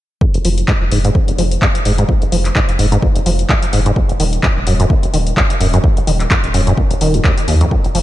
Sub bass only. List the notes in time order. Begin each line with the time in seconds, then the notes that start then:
0.45 F1
0.81 F1
0.91 F1
1.38 F1
1.85 F1
2.32 F1
2.69 F1
2.79 F1
3.26 F1
3.73 F1
4.20 D#1
4.56 D#1
4.67 D#1
5.14 D#1
5.60 D#1
6.07 D#1
6.44 D#1
6.54 D#1
7.01 D#1
7.48 D#2
7.95 F1